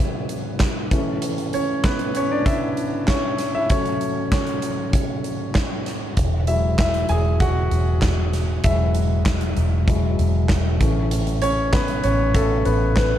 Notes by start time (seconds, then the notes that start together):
Already playing: F#3 G#3 B3 C#4 E4 B4 C#5
0.29 closed hi-hat
0.60 kick, snare, clap, closed hi-hat
0.91 E3 A3 C#4, kick, closed hi-hat
1.22 closed hi-hat
1.38 closed hi-hat
1.53 C#4 C#5, closed hi-hat
1.84 B3 B4, kick, snare, clap, closed hi-hat
1.99 closed hi-hat
2.15 C#4 C#5, closed hi-hat
2.31 D4 D5
2.46 E4 E5, kick, closed hi-hat
2.77 closed hi-hat
3.08 C#4 C#5, kick, snare, clap, closed hi-hat
3.38 snare, closed hi-hat
3.55 E4 E5
3.70 F#3 A3 C#4 C#5, kick, closed hi-hat
3.85 closed hi-hat
4.01 closed hi-hat
4.32 C#4 C#5, kick, snare, clap, closed hi-hat
4.47 closed hi-hat
4.62 closed hi-hat
4.93 kick, closed hi-hat
5.24 closed hi-hat
5.55 kick, snare, clap, closed hi-hat
5.86 snare, closed hi-hat
6.17 E1, kick, closed hi-hat
6.47 F#3 G#3 E4 E5, closed hi-hat
6.78 E4 E5, kick, snare, clap, closed hi-hat
6.94 closed hi-hat
7.09 E1 G#4 G#5, closed hi-hat
7.40 F#4 F#5, kick, closed hi-hat
7.71 E1, closed hi-hat
8.02 kick, snare, clap, closed hi-hat
8.33 snare, closed hi-hat
8.64 E1 F#3 G#3 E4 E5, kick, closed hi-hat
8.95 closed hi-hat
9.25 kick, snare, clap, closed hi-hat
9.41 closed hi-hat
9.57 E1, closed hi-hat
9.88 F#3 G#3 E4, kick, closed hi-hat
10.19 E1, closed hi-hat
10.49 kick, snare, clap, closed hi-hat
10.80 A1 E3 A3 C#4, kick, closed hi-hat
11.11 closed hi-hat
11.27 closed hi-hat
11.42 C#4 C#5, closed hi-hat
11.73 B3 B4, kick, snare, clap, closed hi-hat
11.88 closed hi-hat
12.04 A1 C#4 C#5, closed hi-hat
12.34 A3 A4, kick, closed hi-hat
12.65 A1 B3 B4, closed hi-hat
12.96 B3 B4, kick, snare, clap, closed hi-hat